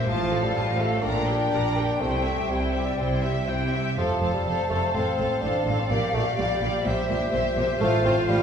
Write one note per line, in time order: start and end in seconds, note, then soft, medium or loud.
0.00 1.05 C5 soft
0.06 0.50 A1 medium
0.06 0.50 A2 medium
0.06 0.45 F3 medium
0.06 0.31 F4 soft
0.06 0.30 C5 soft
0.06 1.05 F5 medium
0.10 0.31 A5 soft
0.31 0.55 A4 soft
0.31 0.56 A4 soft
0.31 0.56 F5 soft
0.43 0.82 G3 medium
0.55 0.98 A1 medium
0.55 0.99 A2 soft
0.55 0.80 F4 soft
0.55 0.79 C5 soft
0.55 0.80 A5 soft
0.79 1.04 A3 medium
0.79 1.04 A4 soft
0.79 1.05 A4 soft
0.79 1.04 F5 soft
1.03 1.47 A#1 medium
1.03 1.47 A#2 medium
1.03 2.02 D4 medium
1.03 1.27 A#4 soft
1.03 1.26 D5 soft
1.03 2.01 D5 soft
1.03 3.73 G5 medium
1.03 1.27 A#5 soft
1.28 1.53 G4 soft
1.28 1.52 A#4 soft
1.28 1.53 G5 soft
1.52 1.95 A#1 soft
1.52 1.96 A#2 soft
1.52 1.77 A#4 soft
1.52 1.77 D5 soft
1.52 1.77 A#5 soft
1.76 2.01 G4 soft
1.76 2.01 A#4 soft
1.76 1.99 G5 soft
1.99 2.44 C2 soft
1.99 2.44 C3 soft
1.99 2.51 A3 medium
1.99 2.24 E4 soft
1.99 2.23 C5 soft
1.99 2.44 E5 soft
1.99 2.24 G5 soft
2.25 2.50 G4 soft
2.25 2.50 E5 soft
2.25 2.51 E5 soft
2.49 2.93 C2 soft
2.49 2.94 C3 soft
2.49 3.48 G3 soft
2.49 2.75 E4 soft
2.49 2.87 C5 soft
2.49 2.74 C5 soft
2.49 2.75 G5 soft
2.73 3.00 G4 soft
2.73 2.99 E5 soft
2.85 3.23 D5 soft
2.98 3.43 C2 soft
2.98 3.43 C3 soft
2.98 3.23 E4 soft
2.98 3.22 C5 soft
2.98 3.22 G5 soft
3.23 3.49 G4 soft
3.23 3.48 E5 soft
3.23 3.50 E5 soft
3.48 3.92 C2 soft
3.48 3.92 C3 soft
3.48 3.74 E4 soft
3.48 3.73 C5 soft
3.48 3.73 G5 soft
3.48 3.84 G5 soft
3.73 3.98 G4 soft
3.73 3.98 E5 soft
3.85 3.91 G5 soft
3.97 4.06 F1 soft
3.97 4.05 F2 soft
3.97 4.31 F3 medium
3.97 4.22 A4 soft
3.97 5.73 C5 soft
3.97 4.21 C5 soft
3.97 4.21 F5 soft
3.97 4.95 A5 soft
4.22 4.30 F1 soft
4.22 4.30 F2 soft
4.22 4.46 A4 soft
4.22 4.45 C5 soft
4.22 4.45 F5 soft
4.33 4.69 G3 medium
4.46 4.54 F1 soft
4.46 4.55 F2 soft
4.46 4.70 A4 soft
4.46 4.69 C5 soft
4.46 4.69 F5 soft
4.70 4.78 F1 soft
4.70 4.78 F2 soft
4.70 4.81 A3 medium
4.70 4.93 A4 soft
4.70 4.92 C5 soft
4.70 4.93 F5 soft
4.93 5.02 A1 soft
4.93 5.03 A2 soft
4.93 5.30 C4 medium
4.93 5.17 A4 soft
4.93 5.15 C5 soft
4.93 6.84 F5 soft
4.93 5.17 F5 soft
5.16 5.26 A1 soft
5.16 5.27 A2 soft
5.16 5.41 A4 soft
5.16 5.40 C5 soft
5.16 5.42 F5 soft
5.30 5.43 C4 medium
5.42 5.50 A1 soft
5.42 5.51 A2 soft
5.42 5.81 D4 medium
5.42 5.66 A4 soft
5.42 5.65 C5 soft
5.42 5.67 F5 soft
5.66 5.74 A1 soft
5.66 5.75 A2 soft
5.66 5.90 A4 soft
5.66 5.90 C5 soft
5.66 5.91 F5 soft
5.80 5.92 C4 medium
5.88 5.97 A#1 soft
5.88 5.99 A#2 soft
5.88 6.13 A#3 medium
5.88 6.13 G4 soft
5.88 6.11 D5 soft
5.88 6.87 D5 soft
5.92 6.14 F5 soft
6.12 6.21 A#1 soft
6.12 6.23 A#2 soft
6.12 6.25 A3 medium
6.12 6.37 G4 soft
6.12 6.35 D5 soft
6.12 6.38 F5 soft
6.36 6.46 A#1 soft
6.36 6.47 A#2 soft
6.36 7.55 G3 medium
6.36 6.61 G4 soft
6.36 6.60 D5 soft
6.36 6.61 F5 soft
6.61 6.70 A#1 soft
6.61 6.70 A#2 soft
6.61 6.85 G4 soft
6.61 6.85 D5 soft
6.61 6.86 F5 soft
6.83 6.94 A#1 medium
6.83 6.93 A#2 medium
6.83 7.08 G4 soft
6.83 7.07 C5 soft
6.83 8.43 C5 soft
6.83 7.83 E5 medium
6.83 7.09 E5 medium
7.09 7.17 A#1 medium
7.09 7.17 A#2 soft
7.09 7.32 G4 soft
7.09 7.31 C5 soft
7.09 7.32 E5 soft
7.33 7.41 A#1 medium
7.33 7.41 A#2 medium
7.33 7.55 G4 soft
7.33 7.56 C5 soft
7.33 7.57 E5 medium
7.56 7.64 A#1 soft
7.56 7.64 A#2 medium
7.56 7.80 G4 soft
7.56 7.78 C5 soft
7.56 7.81 E5 soft
7.79 7.88 A1 medium
7.79 7.88 A2 medium
7.79 8.03 A3 medium
7.79 8.03 F4 medium
7.79 8.03 C5 medium
7.79 8.03 F5 medium
7.79 8.43 F5 medium
8.03 8.11 A1 medium
8.03 8.13 A2 medium
8.03 8.16 C4 medium
8.03 8.26 F4 medium
8.03 8.25 C5 soft
8.03 8.28 F5 soft
8.26 8.35 A1 medium
8.26 8.37 A2 medium
8.26 8.43 G3 medium
8.26 8.43 F4 medium
8.26 8.43 C5 medium
8.26 8.43 F5 soft